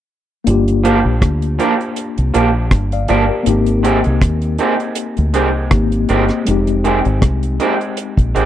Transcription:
0.44 1.02 G1 loud
0.44 3.42 A#3 medium
0.44 3.43 D4 medium
0.44 closed hi-hat medium
0.49 3.44 F4 medium
0.49 2.70 G4 medium
0.68 closed hi-hat soft
0.84 0.97 F3 medium
0.84 0.98 A#3 medium
0.84 0.98 D4 loud
0.84 0.98 G4 medium
0.84 closed hi-hat medium
1.05 1.21 A#1 medium
1.22 1.57 D2 medium
1.22 kick loud
1.22 cross-stick loud
1.22 closed hi-hat medium
1.42 closed hi-hat soft
1.59 1.73 F3 medium
1.59 1.73 A#3 medium
1.59 1.73 D4 medium
1.59 1.73 G4 loud
1.59 closed hi-hat medium
1.81 closed hi-hat soft
1.96 closed hi-hat medium
2.18 2.34 C2 medium
2.18 closed hi-hat soft
2.34 2.70 A#1 medium
2.34 2.48 F3 medium
2.34 2.48 A#3 medium
2.34 2.48 D4 medium
2.34 2.48 G4 medium
2.34 closed hi-hat medium
2.71 3.07 G1 medium
2.71 kick loud
2.71 cross-stick loud
2.71 closed hi-hat medium
2.92 3.08 D5 soft
2.92 3.09 F5 medium
2.92 closed hi-hat soft
3.08 3.29 G1 medium
3.08 3.23 F3 medium
3.08 3.23 A#3 medium
3.08 3.23 D4 loud
3.08 3.23 G4 medium
3.08 3.28 A#4 medium
3.08 3.29 D5 medium
3.08 closed hi-hat medium
3.29 3.48 G4 medium
3.29 3.65 A#4 medium
3.43 4.02 G#1 loud
3.43 5.66 A#3 medium
3.43 5.67 C4 medium
3.43 5.68 D#4 medium
3.43 closed hi-hat medium
3.49 5.69 G4 medium
3.66 closed hi-hat soft
3.83 3.97 D#3 medium
3.83 3.98 G#3 medium
3.83 3.98 C4 medium
3.83 3.98 G4 medium
3.83 closed hi-hat medium
4.04 4.22 C2 medium
4.04 closed hi-hat soft
4.21 4.57 D#2 medium
4.21 kick loud
4.21 cross-stick loud
4.21 closed hi-hat loud
4.42 closed hi-hat soft
4.58 4.73 D#3 medium
4.58 4.73 G#3 medium
4.58 4.73 C4 medium
4.58 4.73 G4 medium
4.58 closed hi-hat medium
4.80 closed hi-hat soft
4.95 closed hi-hat medium
5.17 5.36 D2 medium
5.17 closed hi-hat soft
5.34 5.70 C2 medium
5.34 5.48 D#3 medium
5.34 5.48 G#3 medium
5.34 5.48 C4 medium
5.34 5.48 G4 medium
5.34 closed hi-hat medium
5.71 6.07 G#1 medium
5.71 6.46 A#3 medium
5.71 6.45 C4 soft
5.71 6.47 D#4 soft
5.71 6.48 G4 medium
5.71 kick loud
5.71 cross-stick loud
5.71 closed hi-hat medium
5.92 closed hi-hat soft
6.09 6.29 G1 medium
6.09 6.23 D#3 medium
6.09 6.23 G#3 medium
6.09 6.23 C4 medium
6.09 6.24 G4 medium
6.09 closed hi-hat medium
6.29 cross-stick medium
6.29 closed hi-hat soft
6.45 7.02 F1 loud
6.45 8.45 G#3 medium
6.45 8.45 C4 medium
6.45 8.45 D#4 medium
6.45 closed hi-hat medium
6.51 8.33 G4 medium
6.67 closed hi-hat soft
6.84 6.98 D#3 medium
6.84 6.98 G#3 medium
6.84 6.99 C4 medium
6.84 6.99 G4 medium
6.84 closed hi-hat medium
7.05 7.21 G#1 medium
7.05 closed hi-hat soft
7.22 7.58 C2 medium
7.22 kick loud
7.22 cross-stick loud
7.22 closed hi-hat medium
7.43 closed hi-hat soft
7.60 7.73 D#3 medium
7.60 7.74 G#3 medium
7.60 7.74 C4 loud
7.60 7.74 G4 medium
7.60 closed hi-hat medium
7.81 closed hi-hat soft
7.97 closed hi-hat loud
8.17 8.34 A#1 medium
8.17 kick medium
8.17 closed hi-hat soft
8.35 8.45 G#1 medium
8.35 8.45 D#3 medium
8.35 8.45 G#3 medium
8.35 8.45 C4 medium
8.35 8.45 G4 medium
8.35 closed hi-hat medium

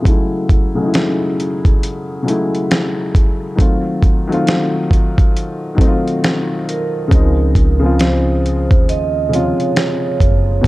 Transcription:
0.02 0.48 C#3 medium
0.02 0.48 F#3 medium
0.02 0.49 G#3 medium
0.02 kick loud
0.06 0.50 A3 medium
0.06 0.51 E4 medium
0.06 closed hi-hat medium
0.49 kick medium
0.49 closed hi-hat soft
0.75 1.75 C#3 medium
0.75 1.75 F#3 medium
0.75 1.76 G#3 medium
0.80 1.77 A3 medium
0.80 0.84 D#4 medium
0.88 1.81 E4 medium
0.94 snare loud
0.94 closed hi-hat medium
1.40 closed hi-hat medium
1.65 kick medium
1.65 closed hi-hat soft
1.83 closed hi-hat medium
2.23 3.12 C#3 medium
2.23 3.13 F#3 medium
2.23 3.14 G#3 medium
2.28 3.15 A3 medium
2.28 3.15 E4 medium
2.28 closed hi-hat medium
2.55 closed hi-hat soft
2.71 snare loud
2.71 closed hi-hat medium
3.15 kick medium
3.15 closed hi-hat medium
3.56 4.01 D#3 medium
3.56 4.02 F#3 medium
3.56 4.02 A3 medium
3.56 kick loud
3.60 4.03 C4 medium
3.60 4.04 F4 medium
3.60 closed hi-hat medium
4.03 kick medium
4.03 closed hi-hat soft
4.27 5.27 D#3 medium
4.27 5.28 F#3 medium
4.27 5.29 A3 medium
4.32 5.30 C4 medium
4.32 5.31 F4 medium
4.32 closed hi-hat soft
4.47 snare loud
4.47 closed hi-hat medium
4.91 kick medium
4.91 closed hi-hat medium
5.18 kick medium
5.18 closed hi-hat soft
5.37 closed hi-hat medium
5.75 6.65 D#3 medium
5.75 6.65 F#3 medium
5.75 6.66 A3 medium
5.75 kick medium
5.80 6.67 C4 medium
5.80 5.88 D#4 medium
5.80 closed hi-hat medium
5.88 6.71 F4 medium
6.08 closed hi-hat soft
6.24 snare loud
6.24 closed hi-hat medium
6.69 8.04 A#4 medium
6.69 closed hi-hat medium
7.08 8.67 C#2 loud
7.08 7.53 C#3 medium
7.08 7.54 F3 medium
7.08 7.55 G#3 medium
7.08 kick loud
7.12 7.56 C4 medium
7.12 7.57 D#4 medium
7.12 closed hi-hat medium
7.55 kick medium
7.55 closed hi-hat medium
7.80 8.80 C#3 medium
7.80 8.81 F3 medium
7.80 8.81 G#3 medium
7.84 8.82 C4 medium
7.84 8.83 F4 medium
7.99 8.91 C5 medium
7.99 snare medium
7.99 closed hi-hat medium
8.46 closed hi-hat medium
8.71 9.50 D#2 medium
8.71 kick medium
8.71 closed hi-hat soft
8.89 9.34 D#5 loud
8.89 closed hi-hat medium
9.29 10.18 C#3 medium
9.29 10.19 F3 medium
9.29 10.20 G#3 medium
9.33 10.21 C3 medium
9.33 10.21 F4 medium
9.33 10.68 C#5 medium
9.33 closed hi-hat medium
9.60 closed hi-hat soft
9.76 snare loud
9.76 closed hi-hat medium
10.20 10.60 F#1 medium
10.20 kick medium
10.20 closed hi-hat medium
10.61 10.68 G#1 loud
10.61 10.68 B2 medium
10.61 10.68 F#3 medium
10.61 kick loud

